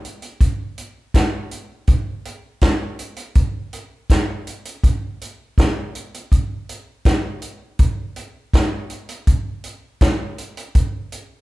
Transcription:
0.05 closed hi-hat medium
0.22 closed hi-hat medium
0.41 kick loud
0.41 closed hi-hat medium
0.78 closed hi-hat medium
1.14 kick loud
1.14 snare loud
1.14 closed hi-hat medium
1.51 closed hi-hat medium
1.87 kick loud
1.87 closed hi-hat medium
2.25 closed hi-hat medium
2.61 kick loud
2.61 snare loud
2.61 closed hi-hat medium
2.99 closed hi-hat medium
3.16 closed hi-hat medium
3.35 kick loud
3.35 closed hi-hat medium
3.73 closed hi-hat medium
4.10 kick loud
4.10 snare loud
4.10 closed hi-hat medium
4.47 closed hi-hat medium
4.65 closed hi-hat medium
4.84 kick loud
4.84 closed hi-hat medium
5.21 closed hi-hat medium
5.58 kick loud
5.58 snare loud
5.58 closed hi-hat medium
5.95 closed hi-hat medium
6.14 closed hi-hat medium
6.32 kick loud
6.32 closed hi-hat medium
6.69 closed hi-hat medium
7.05 kick loud
7.05 snare loud
7.05 closed hi-hat medium
7.42 closed hi-hat medium
7.79 kick loud
7.79 closed hi-hat medium
8.16 closed hi-hat medium
8.54 kick loud
8.54 snare loud
8.54 closed hi-hat medium
8.90 closed hi-hat medium
9.09 closed hi-hat medium
9.27 kick loud
9.27 closed hi-hat medium
9.64 closed hi-hat medium
10.01 kick loud
10.01 snare loud
10.01 closed hi-hat medium
10.38 closed hi-hat medium
10.57 closed hi-hat medium
10.75 kick loud
10.75 closed hi-hat medium
11.12 closed hi-hat medium

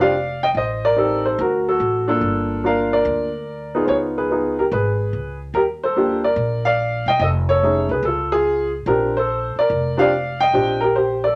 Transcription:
0.00 0.52 F1 medium
0.00 0.13 C4 medium
0.00 0.13 D4 medium
0.00 0.13 F4 medium
0.00 0.14 G4 medium
0.00 0.41 D5 medium
0.00 0.40 F5 medium
0.43 0.49 D#5 medium
0.43 0.48 G5 loud
0.55 1.34 A1 medium
0.55 0.83 C5 medium
0.55 0.85 D#5 medium
0.85 1.23 A#4 medium
0.85 1.27 D5 medium
0.96 1.39 C4 medium
0.96 1.39 D#4 medium
0.96 1.39 G4 medium
0.96 1.25 A4 medium
1.25 1.39 A4 medium
1.25 1.40 C5 medium
1.39 1.77 D2 medium
1.39 1.66 F#4 medium
1.39 1.69 A#4 medium
1.69 2.07 F#4 medium
1.69 2.07 A4 medium
1.80 2.19 A1 medium
2.07 2.60 A#3 medium
2.07 2.61 D4 medium
2.07 2.61 F4 medium
2.07 2.61 A4 medium
2.21 3.01 G1 medium
2.63 3.28 A#3 medium
2.63 3.28 D4 medium
2.63 3.28 F4 medium
2.63 2.92 A#4 medium
2.63 2.91 D5 medium
2.63 2.94 F5 medium
2.93 3.82 A#4 medium
2.93 3.82 D5 medium
3.05 3.84 D2 medium
3.75 4.27 B3 medium
3.75 4.27 D#4 medium
3.75 4.28 F4 medium
3.75 3.88 G#4 medium
3.85 4.67 C#2 medium
3.85 3.96 G#4 medium
3.85 3.89 C5 medium
3.85 3.95 C#5 medium
4.18 4.30 G#4 medium
4.18 4.56 B4 medium
4.30 4.55 B3 medium
4.30 4.56 D#4 medium
4.30 4.56 F4 soft
4.30 4.56 G#4 medium
4.59 4.65 G4 medium
4.59 4.64 A#4 medium
4.72 5.10 G#1 medium
4.72 5.38 G#4 medium
4.72 5.38 B4 medium
5.13 5.52 C#2 medium
5.54 6.33 D#2 medium
5.54 5.63 G4 medium
5.54 5.61 A#4 medium
5.84 6.23 A4 medium
5.84 6.22 C5 medium
5.96 6.21 A#3 medium
5.96 6.22 D4 medium
5.96 6.22 F4 medium
5.96 6.22 G4 medium
6.24 6.64 A#4 medium
6.24 6.65 D5 medium
6.36 7.02 A#1 medium
6.65 7.05 D5 medium
6.65 7.08 F5 loud
7.06 7.19 E1 medium
7.06 7.20 D#5 medium
7.06 7.20 G5 loud
7.19 7.86 F1 medium
7.19 7.28 D#5 medium
7.24 7.30 A4 medium
7.49 7.88 A4 medium
7.49 7.88 C#5 medium
7.63 7.88 A3 soft
7.63 7.88 C#4 medium
7.63 7.88 D#4 soft
7.63 7.88 G#4 medium
7.89 8.02 C2 medium
7.89 8.03 B4 medium
7.93 8.04 G#4 medium
8.03 8.82 C#2 medium
8.03 8.33 A4 medium
8.08 8.32 F4 medium
8.32 8.72 F4 medium
8.32 8.71 G#4 loud
8.86 9.52 A#1 medium
8.86 9.12 C4 medium
8.86 9.13 D4 medium
8.86 9.12 F4 soft
8.86 9.13 G4 medium
8.86 9.16 A#4 medium
9.17 9.56 A4 medium
9.17 9.55 C5 medium
9.56 10.00 D5 medium
9.56 muted upright bass stroke soft
9.61 9.97 A#4 medium
9.70 10.49 F1 medium
9.97 10.10 C4 medium
9.97 10.10 D4 medium
9.97 10.11 F4 medium
9.97 10.11 G4 medium
9.97 10.41 F5 loud
10.01 10.38 D5 medium
10.40 10.80 D#5 medium
10.40 10.83 G5 loud
10.53 11.32 A#1 medium
10.53 10.78 C4 medium
10.53 10.78 D4 medium
10.53 10.79 F4 medium
10.53 10.79 G4 medium
10.81 10.95 G4 medium
10.81 10.95 A#4 medium
10.96 11.22 G4 medium
10.96 11.24 C5 medium
11.24 11.35 A4 medium
11.24 11.35 D5 medium

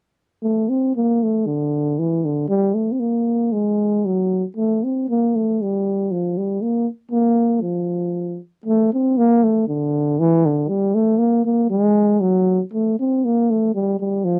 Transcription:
0.43 0.71 A3 medium
0.69 0.95 C4 medium
0.96 1.25 A#3 medium
1.23 1.48 A3 medium
1.47 2.01 D3 medium
1.99 2.27 E3 medium
2.25 2.48 D3 medium
2.48 2.76 G3 loud
2.75 2.93 A3 medium
2.92 3.02 C4 medium
3.00 3.54 A#3 medium
3.53 4.07 G#3 medium
4.06 4.44 F#3 medium
4.56 4.85 A3 medium
4.84 5.08 C4 medium
5.09 5.37 A#3 medium
5.36 5.64 A3 medium
5.62 6.13 G3 medium
6.12 6.39 F3 medium
6.38 6.63 G3 medium
6.62 6.87 A#3 medium
7.12 7.63 A#3 medium
7.61 8.39 F3 medium
8.66 8.90 A3 medium
8.94 9.19 C4 medium
9.18 9.45 A#3 loud
9.44 9.68 A3 medium
9.68 10.21 D3 medium
10.19 10.47 E3 loud
10.46 10.70 D3 medium
10.69 10.96 G3 medium
10.95 11.20 A3 medium
11.18 11.45 A#3 loud
11.45 11.68 A#3 medium
11.70 12.22 G#3 loud
12.21 12.60 F#3 medium
12.73 12.98 A3 medium
13.00 13.27 C4 medium
13.25 13.52 A#3 medium
13.51 13.74 A3 medium
13.75 13.99 G3 medium
14.00 14.26 G3 medium
14.25 14.39 F3 medium

